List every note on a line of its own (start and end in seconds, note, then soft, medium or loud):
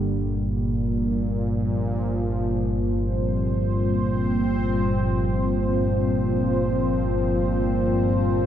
0.00 8.46 G1 medium
0.00 8.46 G2 medium
0.00 0.10 G3 medium
0.00 5.11 A#3 medium
0.09 8.46 A#2 medium
0.57 8.46 F3 medium
2.65 8.46 C5 medium
2.88 8.46 C4 medium